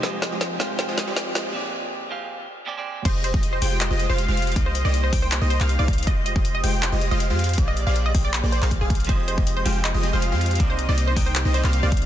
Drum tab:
CC |--------------------------------|--------------------------------|x-------------------------------|--------------------------------|
HH |x---x---x---x---x---x---x---x---|--------------------------------|x---x---x---o---x---x---x---xxxx|x---x---x---o---x---x---x---xxxx|
CP |--------------------------------|--------------------------------|----------------x---------------|----------------x-----x---------|
SD |o---o---o---o---o---o---o---o---|--------------------------------|--------------------------------|--------------------------------|
BD |--------------------------------|--------------------------------|o-----o-------------------------|o-----------o---------------o---|

CC |--------------------------------|--------------------------------|--------------------------------|--------------------------------|
HH |x---x---x---o---x---x---x---xxxx|x---x---x---o---x---x---x---xxxx|x---x---x---o---x---x---x---xxxx|x---x---x---o---x---x---x---xxx-|
CP |----------------x---------------|----------------x-----x---------|----------------x---------------|----------------x-----x---------|
SD |--------------------------------|--------------------------------|--------------------------------|--------------------------------|
BD |o-----o-------------------------|o-----------o-----------o---o---|o-----o-------------------------|o-----------o---------------o---|